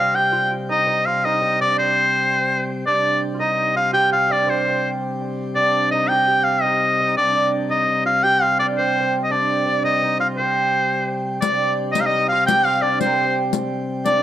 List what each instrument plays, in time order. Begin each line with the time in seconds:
Already playing: pipe organ C3 G3, lute F4, shawm F5
0.14 lute G4, shawm G5
0.32 lute F4
0.69 lute D#4, shawm D#5
0.87 lute D#4
1.06 lute F4, shawm F5
1.25 lute D#4, shawm D#5
1.42 lute D#4
1.61 lute D4, shawm D5
1.79 lute C4, shawm C5
2.86 pipe organ C3 G3, lute D4, shawm D5
3.34 lute F4
3.40 lute D#4, shawm D#5
3.76 lute F4, shawm F5
3.93 lute G4, shawm G5
4.13 lute F4, shawm F5
4.30 lute D4, shawm D5
4.47 lute C4, shawm C5
4.70 lute C4
5.55 lute D4, shawm D5
5.92 lute D#4, shawm D#5
6.08 lute G4, shawm G5
6.28 lute G4
6.44 shawm F5
6.62 lute D#4, shawm D#5
7.00 lute D#4
7.17 pipe organ C3 G3, lute D4, shawm D5
7.35 lute D4
7.69 lute D#4, shawm D#5
7.86 lute D#4
8.05 lute F4, shawm F5
8.24 lute G4, shawm G5
8.42 lute F4, shawm F5
8.59 lute D4, shawm D5
8.78 lute C4, shawm C5
9.01 lute C4
9.24 shawm D#5
9.30 lute D4, shawm D5
9.66 lute D4
9.83 lute D#4, shawm D#5
10.02 lute D#4
10.19 lute F4, shawm F5
10.37 lute C4, shawm C5
11.41 pipe organ C3 G3, lute D4, shawm D5, fiddle D5, riq
11.61 fiddle D5
11.93 lute D#4, shawm D#5, fiddle D#5, riq
12.01 shawm F5
12.07 lute D#4, shawm D#5, fiddle D#5
12.29 lute F4, shawm F5, fiddle F5
12.47 lute G4, shawm G5, fiddle G5, riq
12.64 lute F4, fiddle F5, shawm F5
12.81 lute D4, fiddle D5, shawm D5
13.00 lute C4, fiddle C5, shawm C5, riq
13.06 fiddle A#4
13.14 fiddle C5
13.21 lute C4
13.53 riq
14.05 lute D4, fiddle D5, shawm D5, riq